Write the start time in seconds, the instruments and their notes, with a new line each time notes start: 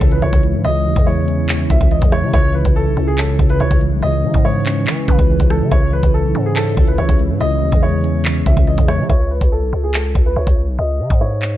Already playing: analog synth pad C#3 E3 E4, tine electric piano E3 C#4 C#5
0.00 808-style bass C#2, tine electric piano C#3, kick
0.12 grand piano B4, closed hi-hat
0.22 808-style bass C#2, tine electric piano E3, grand piano C#5, closed hi-hat
0.33 808-style bass C#2, kick
0.43 tine electric piano G#3, closed hi-hat
0.54 808-style bass G#2
0.64 808-style bass C#2, tine electric piano C#3, grand piano D#5, closed hi-hat
0.86 808-style bass D#2, tine electric piano E3
0.96 808-style bass E2, kick, closed hi-hat
1.07 tine electric piano G#3, grand piano C#5
1.28 tine electric piano C#4, closed hi-hat
1.49 tine electric piano C#5, clap, closed hi-hat
1.70 808-style bass C#2, tine electric piano C#3, grand piano E5, kick
1.81 808-style bass C#2, kick, closed hi-hat
1.91 tine electric piano E3, grand piano D#5, closed hi-hat
2.02 808-style bass E2, kick, closed hi-hat
2.12 tine electric piano G#3, grand piano C#5, cross-stick
2.23 808-style bass C#3
2.33 808-style bass C#2, tine electric piano C#3, grand piano C#5, kick, closed hi-hat
2.54 tine electric piano E3, grand piano B4
2.65 808-style bass C#2, kick, closed hi-hat
2.76 grand piano A4
2.86 808-style bass B1
2.97 808-style bass C#2, tine electric piano C#4, closed hi-hat
3.07 grand piano G#4
3.18 grand piano A4, tine electric piano C#5, clap, closed hi-hat
3.39 808-style bass C#2, tine electric piano C#3, kick
3.50 grand piano B4, closed hi-hat
3.60 808-style bass C#2, tine electric piano E3, grand piano C#5, closed hi-hat
3.71 808-style bass C#2, kick
3.81 tine electric piano G#3, closed hi-hat
3.92 808-style bass B1
4.03 808-style bass C#2, tine electric piano C#3, grand piano D#5, closed hi-hat
4.24 808-style bass C#3, tine electric piano E3
4.34 808-style bass G#2, kick, closed hi-hat
4.45 tine electric piano G#3, grand piano C#5
4.66 tine electric piano C#4, clap, closed hi-hat
4.87 808-style bass E3, tine electric piano C#5, clap, closed hi-hat
5.08 808-style bass C#3, tine electric piano C#3, grand piano B4, kick
5.19 808-style bass C#2, kick, closed hi-hat
5.29 tine electric piano E3
5.40 808-style bass C#2, kick, closed hi-hat
5.50 tine electric piano G#3, grand piano A4, cross-stick
5.61 808-style bass C#3
5.71 808-style bass C#2, tine electric piano C#3, analog synth pad C#3 E4, grand piano C#5, kick, closed hi-hat
5.93 tine electric piano E3, grand piano B4
6.03 808-style bass C#2, kick, closed hi-hat
6.14 grand piano A4
6.24 808-style bass B1
6.35 808-style bass G#2, tine electric piano C#4, closed hi-hat
6.46 grand piano G#4
6.56 grand piano A4, tine electric piano C#5, clap, closed hi-hat
6.77 808-style bass C#2, tine electric piano C#3, kick
6.88 grand piano B4, closed hi-hat
6.98 808-style bass C#2, tine electric piano E3, grand piano C#5, closed hi-hat
7.09 808-style bass C#2, kick
7.19 tine electric piano G#3, closed hi-hat
7.30 808-style bass G#2
7.41 808-style bass C#2, tine electric piano C#3, grand piano D#5, closed hi-hat
7.62 808-style bass D#2, tine electric piano E3
7.72 808-style bass E2, kick, closed hi-hat
7.83 tine electric piano G#3, grand piano C#5
8.04 tine electric piano C#4, closed hi-hat
8.25 tine electric piano C#5, clap, closed hi-hat
8.46 808-style bass C#2, tine electric piano C#3, grand piano E5, kick
8.57 808-style bass C#2, kick, closed hi-hat
8.67 tine electric piano E3, grand piano D#5, closed hi-hat
8.78 808-style bass E2, kick, closed hi-hat
8.88 tine electric piano G#3, grand piano C#5, cross-stick
8.99 808-style bass C#3
9.10 808-style bass C#2, grand piano C#5, kick
9.31 grand piano B4
9.41 808-style bass C#2, kick
9.52 grand piano A4
9.62 808-style bass B1
9.73 808-style bass C#2
9.83 grand piano G#4
9.94 grand piano A4, clap
10.15 808-style bass C#2, kick
10.26 grand piano B4
10.36 808-style bass C#2, grand piano C#5
10.47 808-style bass C#2, kick
10.68 808-style bass B1
10.79 808-style bass C#2, grand piano D#5
11.00 808-style bass C#3
11.10 808-style bass G#2, kick
11.21 grand piano C#5
11.42 clap